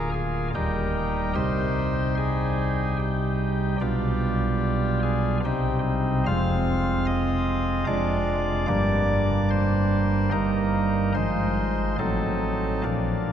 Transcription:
0.00 0.50 D1 soft
0.00 0.50 D2 medium
0.00 0.50 A#3 soft
0.00 0.50 F4 soft
0.00 0.12 G#4 soft
0.14 0.48 G#4 medium
0.55 1.33 D#1 medium
0.55 1.34 D#2 medium
0.55 1.33 G3 soft
0.55 1.33 D#4 soft
0.55 1.33 G4 soft
0.55 1.33 A#4 medium
1.35 3.76 C2 medium
1.35 3.76 C3 medium
1.35 3.76 G3 soft
1.35 3.76 D#4 soft
1.35 2.97 G4 soft
1.35 2.15 C5 loud
2.17 2.96 G#4 loud
2.99 3.78 G4 medium
3.81 5.40 B1 medium
3.81 5.40 B2 medium
3.81 5.40 G3 medium
3.81 5.40 D4 soft
3.81 5.40 F4 soft
3.81 4.99 G4 loud
5.03 5.37 G#4 medium
5.45 6.24 C2 medium
5.45 6.24 C3 medium
5.45 6.24 G3 soft
5.45 6.24 C4 soft
5.45 6.24 D#4 soft
5.45 5.79 G4 medium
6.26 7.84 F1 medium
6.26 7.84 F2 medium
6.26 7.84 G#3 medium
6.26 7.84 C4 soft
6.26 7.84 F4 soft
6.26 7.05 F5 loud
7.07 7.85 D#5 loud
7.87 8.66 F1 medium
7.87 8.66 F2 medium
7.87 8.66 G#3 soft
7.87 8.66 D4 medium
7.87 8.66 F4 soft
7.87 8.66 D5 loud
8.68 10.29 G1 medium
8.68 10.29 G2 medium
8.68 10.29 G3 soft
8.68 10.29 A#3 soft
8.68 10.29 D4 soft
8.68 9.49 D5 loud
9.50 10.31 C5 loud
10.32 11.13 G1 medium
10.32 11.12 G2 medium
10.32 11.12 G3 soft
10.32 11.13 A#3 soft
10.32 11.12 D#4 soft
10.32 11.12 A#4 loud
11.15 11.96 G#1 medium
11.15 11.96 G#2 medium
11.15 11.96 F3 soft
11.15 11.96 G#3 soft
11.15 11.96 D#4 soft
11.15 11.96 C5 medium
11.99 12.82 A1 soft
11.99 12.82 A2 medium
11.99 12.82 F#3 soft
11.99 12.82 C4 soft
11.99 12.82 D#4 soft
11.99 12.82 A4 medium
12.83 13.32 A#1 soft
12.83 13.32 A#2 soft
12.83 13.32 F3 soft
12.83 13.32 A#3 soft
12.83 13.32 D4 soft
12.83 13.32 F4 medium

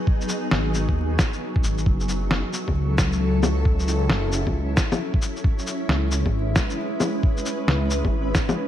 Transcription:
0.00 5.44 F#3 medium
0.00 3.04 B3 medium
0.00 1.86 D#4 medium
0.00 1.85 G#4 medium
0.07 kick loud
0.21 shaker soft
0.29 shaker medium
0.51 0.87 G#1 medium
0.51 snare loud
0.74 shaker medium
0.89 1.18 D#2 medium
0.89 kick medium
1.19 kick loud
1.19 snare loud
1.19 shaker medium
1.33 shaker soft
1.56 kick loud
1.64 1.85 G#1 medium
1.64 shaker medium
1.78 shaker soft
1.86 2.43 F#1 loud
1.86 kick loud
1.98 8.68 C#4 medium
1.98 8.68 E4 medium
1.98 shaker soft
2.08 5.44 A4 medium
2.08 shaker soft
2.31 snare loud
2.53 shaker medium
2.68 2.97 C#2 medium
2.68 kick medium
2.68 low bongo soft
2.98 4.11 C#2 medium
2.98 kick loud
2.98 snare loud
2.98 shaker medium
3.12 shaker soft
3.43 low bongo medium
3.43 shaker medium
3.65 kick loud
3.79 shaker soft
3.88 shaker medium
4.10 4.45 F#1 medium
4.10 snare medium
4.32 shaker medium
4.47 4.76 C#2 medium
4.47 kick medium
4.47 low bongo soft
4.77 kick loud
4.77 snare loud
4.77 shaker medium
4.92 low bongo medium
4.92 shaker soft
5.14 kick loud
5.22 shaker soft
5.36 shaker soft
5.43 8.68 G#3 medium
5.43 kick loud
5.59 shaker soft
5.67 shaker soft
5.85 6.24 C#2 medium
5.85 8.68 B4 medium
5.89 snare loud
6.11 shaker medium
6.26 6.55 G#1 medium
6.26 kick medium
6.26 low bongo soft
6.56 kick loud
6.56 snare loud
6.56 shaker medium
6.70 shaker soft
7.00 low bongo medium
7.00 shaker medium
7.23 kick loud
7.37 shaker soft
7.46 shaker medium
7.68 8.03 C#2 medium
7.68 snare loud
7.90 shaker medium
8.04 8.34 G#1 medium
8.04 kick medium
8.04 low bongo soft
8.35 kick loud
8.35 snare loud
8.35 shaker medium
8.49 low bongo medium
8.49 shaker soft

